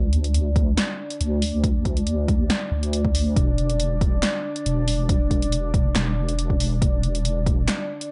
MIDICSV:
0, 0, Header, 1, 4, 480
1, 0, Start_track
1, 0, Tempo, 431655
1, 1821, Time_signature, 4, 2, 24, 8
1, 9024, End_track
2, 0, Start_track
2, 0, Title_t, "Ambient pad"
2, 0, Program_c, 0, 92
2, 0, Note_on_c, 0, 62, 77
2, 0, Note_on_c, 0, 74, 75
2, 9024, Note_off_c, 0, 62, 0
2, 9024, Note_off_c, 0, 74, 0
2, 9024, End_track
3, 0, Start_track
3, 0, Title_t, "Wobble bass"
3, 0, Program_c, 1, 39
3, 0, Note_on_c, 1, 38, 101
3, 844, Note_off_c, 1, 38, 0
3, 1341, Note_on_c, 1, 38, 94
3, 2763, Note_off_c, 1, 38, 0
3, 3019, Note_on_c, 1, 38, 99
3, 3722, Note_off_c, 1, 38, 0
3, 3740, Note_on_c, 1, 28, 102
3, 4683, Note_off_c, 1, 28, 0
3, 5180, Note_on_c, 1, 28, 100
3, 6603, Note_off_c, 1, 28, 0
3, 6622, Note_on_c, 1, 28, 99
3, 7564, Note_off_c, 1, 28, 0
3, 7582, Note_on_c, 1, 28, 103
3, 8524, Note_off_c, 1, 28, 0
3, 9024, End_track
4, 0, Start_track
4, 0, Title_t, "Drums"
4, 142, Note_on_c, 9, 42, 52
4, 253, Note_off_c, 9, 42, 0
4, 270, Note_on_c, 9, 42, 50
4, 381, Note_off_c, 9, 42, 0
4, 383, Note_on_c, 9, 42, 76
4, 494, Note_off_c, 9, 42, 0
4, 621, Note_on_c, 9, 36, 107
4, 623, Note_on_c, 9, 42, 53
4, 732, Note_off_c, 9, 36, 0
4, 734, Note_off_c, 9, 42, 0
4, 862, Note_on_c, 9, 38, 127
4, 862, Note_on_c, 9, 42, 81
4, 973, Note_off_c, 9, 38, 0
4, 973, Note_off_c, 9, 42, 0
4, 1228, Note_on_c, 9, 42, 50
4, 1340, Note_off_c, 9, 42, 0
4, 1342, Note_on_c, 9, 42, 76
4, 1453, Note_off_c, 9, 42, 0
4, 1580, Note_on_c, 9, 46, 86
4, 1691, Note_off_c, 9, 46, 0
4, 1820, Note_on_c, 9, 36, 124
4, 1820, Note_on_c, 9, 42, 75
4, 1931, Note_off_c, 9, 36, 0
4, 1932, Note_off_c, 9, 42, 0
4, 2060, Note_on_c, 9, 36, 66
4, 2061, Note_on_c, 9, 42, 50
4, 2171, Note_off_c, 9, 36, 0
4, 2172, Note_off_c, 9, 42, 0
4, 2188, Note_on_c, 9, 42, 50
4, 2299, Note_off_c, 9, 42, 0
4, 2299, Note_on_c, 9, 42, 80
4, 2410, Note_off_c, 9, 42, 0
4, 2540, Note_on_c, 9, 36, 104
4, 2540, Note_on_c, 9, 42, 49
4, 2651, Note_off_c, 9, 36, 0
4, 2651, Note_off_c, 9, 42, 0
4, 2778, Note_on_c, 9, 38, 127
4, 2778, Note_on_c, 9, 42, 76
4, 2889, Note_off_c, 9, 38, 0
4, 2889, Note_off_c, 9, 42, 0
4, 3147, Note_on_c, 9, 42, 48
4, 3258, Note_off_c, 9, 42, 0
4, 3260, Note_on_c, 9, 42, 72
4, 3371, Note_off_c, 9, 42, 0
4, 3388, Note_on_c, 9, 36, 64
4, 3499, Note_off_c, 9, 36, 0
4, 3500, Note_on_c, 9, 46, 94
4, 3611, Note_off_c, 9, 46, 0
4, 3741, Note_on_c, 9, 36, 120
4, 3742, Note_on_c, 9, 42, 74
4, 3852, Note_off_c, 9, 36, 0
4, 3853, Note_off_c, 9, 42, 0
4, 3983, Note_on_c, 9, 42, 51
4, 4094, Note_off_c, 9, 42, 0
4, 4109, Note_on_c, 9, 42, 49
4, 4220, Note_off_c, 9, 42, 0
4, 4222, Note_on_c, 9, 42, 76
4, 4333, Note_off_c, 9, 42, 0
4, 4462, Note_on_c, 9, 36, 107
4, 4464, Note_on_c, 9, 42, 49
4, 4573, Note_off_c, 9, 36, 0
4, 4575, Note_off_c, 9, 42, 0
4, 4702, Note_on_c, 9, 38, 123
4, 4702, Note_on_c, 9, 39, 84
4, 4702, Note_on_c, 9, 42, 79
4, 4813, Note_off_c, 9, 38, 0
4, 4813, Note_off_c, 9, 39, 0
4, 4813, Note_off_c, 9, 42, 0
4, 5069, Note_on_c, 9, 42, 50
4, 5181, Note_off_c, 9, 42, 0
4, 5183, Note_on_c, 9, 42, 77
4, 5294, Note_off_c, 9, 42, 0
4, 5423, Note_on_c, 9, 46, 95
4, 5534, Note_off_c, 9, 46, 0
4, 5662, Note_on_c, 9, 36, 115
4, 5662, Note_on_c, 9, 42, 77
4, 5773, Note_off_c, 9, 36, 0
4, 5773, Note_off_c, 9, 42, 0
4, 5902, Note_on_c, 9, 36, 60
4, 5904, Note_on_c, 9, 42, 55
4, 6013, Note_off_c, 9, 36, 0
4, 6015, Note_off_c, 9, 42, 0
4, 6031, Note_on_c, 9, 42, 53
4, 6142, Note_off_c, 9, 42, 0
4, 6142, Note_on_c, 9, 42, 79
4, 6254, Note_off_c, 9, 42, 0
4, 6381, Note_on_c, 9, 36, 101
4, 6383, Note_on_c, 9, 42, 54
4, 6493, Note_off_c, 9, 36, 0
4, 6495, Note_off_c, 9, 42, 0
4, 6622, Note_on_c, 9, 38, 116
4, 6622, Note_on_c, 9, 39, 83
4, 6622, Note_on_c, 9, 42, 79
4, 6733, Note_off_c, 9, 38, 0
4, 6733, Note_off_c, 9, 39, 0
4, 6733, Note_off_c, 9, 42, 0
4, 6989, Note_on_c, 9, 42, 49
4, 7101, Note_off_c, 9, 42, 0
4, 7102, Note_on_c, 9, 42, 85
4, 7213, Note_off_c, 9, 42, 0
4, 7229, Note_on_c, 9, 36, 57
4, 7340, Note_off_c, 9, 36, 0
4, 7342, Note_on_c, 9, 46, 93
4, 7454, Note_off_c, 9, 46, 0
4, 7581, Note_on_c, 9, 36, 112
4, 7583, Note_on_c, 9, 42, 85
4, 7693, Note_off_c, 9, 36, 0
4, 7694, Note_off_c, 9, 42, 0
4, 7822, Note_on_c, 9, 42, 56
4, 7933, Note_off_c, 9, 42, 0
4, 7949, Note_on_c, 9, 42, 53
4, 8060, Note_off_c, 9, 42, 0
4, 8062, Note_on_c, 9, 42, 83
4, 8174, Note_off_c, 9, 42, 0
4, 8301, Note_on_c, 9, 36, 99
4, 8303, Note_on_c, 9, 42, 53
4, 8412, Note_off_c, 9, 36, 0
4, 8414, Note_off_c, 9, 42, 0
4, 8542, Note_on_c, 9, 38, 111
4, 8542, Note_on_c, 9, 39, 91
4, 8542, Note_on_c, 9, 42, 85
4, 8653, Note_off_c, 9, 38, 0
4, 8653, Note_off_c, 9, 39, 0
4, 8653, Note_off_c, 9, 42, 0
4, 8909, Note_on_c, 9, 42, 53
4, 9020, Note_off_c, 9, 42, 0
4, 9024, End_track
0, 0, End_of_file